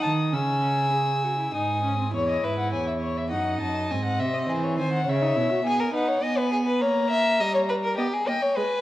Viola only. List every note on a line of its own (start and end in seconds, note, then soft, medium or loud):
0.00 0.34 D#4 medium
0.33 0.92 C#4 medium
0.93 1.25 G#4 medium
1.23 1.38 F#4 soft
1.39 1.53 E4 medium
1.54 1.83 D#4 medium
1.84 1.98 C#4 medium
1.99 2.13 C4 medium
2.14 3.28 E4 medium
3.32 3.92 D#4 medium
3.90 5.06 C4 medium
5.07 5.23 C#4 medium
5.22 5.37 D#4 medium
5.36 5.51 E4 medium
5.50 5.63 F#4 medium
5.64 5.93 B3 medium
5.93 6.22 D#4 medium
6.23 6.82 B3 medium
6.81 7.41 A#3 medium
7.40 7.97 G3 medium
7.98 8.06 B3 medium
8.27 8.35 A#3 medium
8.56 8.64 G#3 medium